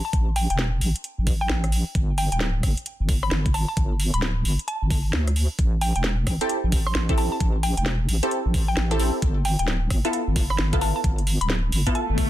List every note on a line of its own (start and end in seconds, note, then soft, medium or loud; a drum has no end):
0.05 0.10 A5 medium
0.13 0.47 A1 loud
0.13 kick loud
0.13 closed hi-hat medium
0.36 0.45 G5 medium
0.36 open hi-hat medium
0.50 0.80 E1 medium
0.50 0.56 G5 medium
0.50 closed hi-hat medium
0.59 snare loud
0.81 0.94 A1 medium
0.81 open hi-hat medium
0.96 closed hi-hat medium
1.04 closed hi-hat medium
1.18 1.48 A1 medium
1.27 kick loud
1.27 open hi-hat loud
1.41 1.72 G5 medium
1.50 1.84 A1 loud
1.50 snare loud
1.64 cross-stick medium
1.64 closed hi-hat soft
1.72 open hi-hat medium
1.95 2.29 G1 loud
1.95 kick loud
1.95 closed hi-hat medium
2.18 2.27 G5 medium
2.18 open hi-hat medium
2.32 2.62 D1 medium
2.32 2.38 G5 medium
2.32 closed hi-hat medium
2.41 snare loud
2.63 2.76 G1 medium
2.63 kick medium
2.63 cross-stick soft
2.63 open hi-hat medium
2.77 closed hi-hat medium
2.86 closed hi-hat medium
3.00 3.30 G1 medium
3.09 kick loud
3.09 open hi-hat loud
3.23 3.33 B5 medium
3.23 cross-stick medium
3.31 3.65 G1 loud
3.31 snare loud
3.46 kick loud
3.46 closed hi-hat soft
3.54 3.63 A5 medium
3.54 cross-stick soft
3.54 open hi-hat medium
3.68 3.74 A5 medium
3.77 4.11 G1 medium
3.77 kick loud
3.77 closed hi-hat medium
4.00 open hi-hat medium
4.14 4.43 D1 medium
4.14 4.24 B5 medium
4.14 closed hi-hat medium
4.22 snare loud
4.45 4.58 G1 medium
4.45 open hi-hat medium
4.59 closed hi-hat medium
4.68 5.13 A5 medium
4.68 closed hi-hat medium
4.82 5.12 G1 medium
4.91 kick loud
4.91 open hi-hat loud
5.13 5.47 D2 loud
5.13 snare loud
5.28 cross-stick medium
5.28 closed hi-hat medium
5.36 open hi-hat medium
5.59 5.93 A1 loud
5.59 kick loud
5.59 closed hi-hat medium
5.81 5.91 G5 medium
5.81 open hi-hat medium
5.96 6.25 E1 medium
5.96 6.01 G5 medium
5.96 closed hi-hat medium
6.04 snare loud
6.27 6.39 A1 medium
6.27 kick medium
6.27 cross-stick soft
6.27 open hi-hat medium
6.41 6.57 C4 medium
6.41 6.57 E4 medium
6.41 6.57 G4 medium
6.41 6.57 A4 loud
6.41 closed hi-hat medium
6.49 closed hi-hat medium
6.64 6.93 A1 medium
6.72 kick loud
6.72 open hi-hat loud
6.86 6.97 C6 medium
6.86 cross-stick medium
6.95 7.29 A1 loud
6.95 snare loud
7.09 7.17 C4 medium
7.09 7.17 E4 medium
7.09 7.17 G4 medium
7.09 7.17 A4 loud
7.09 kick loud
7.09 closed hi-hat medium
7.18 7.37 C4 medium
7.18 7.37 E4 medium
7.18 7.37 G4 medium
7.18 7.37 A4 medium
7.18 7.27 A5 medium
7.18 cross-stick soft
7.18 open hi-hat medium
7.32 7.37 A5 medium
7.40 7.75 A1 medium
7.40 kick loud
7.40 closed hi-hat medium
7.63 7.72 G5 medium
7.63 open hi-hat medium
7.77 8.07 E1 medium
7.77 7.83 G5 medium
7.77 closed hi-hat medium
7.86 snare loud
8.09 8.21 A1 medium
8.09 open hi-hat medium
8.23 8.39 C4 medium
8.23 8.39 E4 medium
8.23 8.39 G4 medium
8.23 8.39 A4 loud
8.23 closed hi-hat medium
8.31 closed hi-hat medium
8.46 8.75 A1 medium
8.54 kick loud
8.54 open hi-hat medium
8.68 9.00 G5 medium
8.77 9.11 A1 loud
8.77 snare loud
8.91 8.98 C4 medium
8.91 8.98 E4 medium
8.91 8.98 G4 medium
8.91 8.98 A4 loud
8.91 cross-stick soft
8.91 closed hi-hat medium
8.99 9.18 C4 medium
8.99 9.18 E4 medium
8.99 9.18 G4 medium
8.99 9.18 A4 medium
8.99 open hi-hat medium
9.22 9.56 G1 loud
9.22 kick loud
9.22 closed hi-hat medium
9.45 9.54 G5 medium
9.45 open hi-hat loud
9.59 9.89 D1 medium
9.59 9.65 G5 medium
9.59 closed hi-hat medium
9.68 snare loud
9.90 10.03 G1 medium
9.90 kick medium
9.90 cross-stick soft
9.90 open hi-hat medium
10.05 10.21 B3 medium
10.05 10.21 E4 medium
10.05 10.21 F4 medium
10.05 10.21 A4 loud
10.05 closed hi-hat medium
10.13 closed hi-hat medium
10.28 10.57 G1 medium
10.36 kick loud
10.36 open hi-hat loud
10.50 10.60 B5 medium
10.50 cross-stick medium
10.59 10.93 G1 loud
10.59 snare loud
10.73 10.80 B3 medium
10.73 10.80 E4 medium
10.73 10.80 F4 medium
10.73 10.80 A4 loud
10.73 kick loud
10.73 closed hi-hat medium
10.81 11.00 B3 medium
10.81 11.00 E4 medium
10.81 11.00 F4 medium
10.81 11.00 A4 medium
10.81 10.91 A5 medium
10.81 cross-stick soft
10.81 open hi-hat medium
10.96 11.01 A5 medium
11.04 11.38 G1 loud
11.04 kick loud
11.04 closed hi-hat medium
11.18 closed hi-hat soft
11.27 open hi-hat loud
11.41 11.71 D1 medium
11.41 11.51 B5 medium
11.41 closed hi-hat medium
11.50 snare loud
11.72 11.85 G1 medium
11.72 open hi-hat medium
11.87 12.03 B3 medium
11.87 12.03 E4 medium
11.87 12.03 F4 medium
11.87 12.03 A4 loud
11.87 kick medium
11.87 closed hi-hat medium
11.95 12.30 A5 medium
11.95 closed hi-hat medium
11.95 swell medium
12.09 12.30 G1 medium
12.18 kick loud
12.18 cross-stick soft
12.18 open hi-hat loud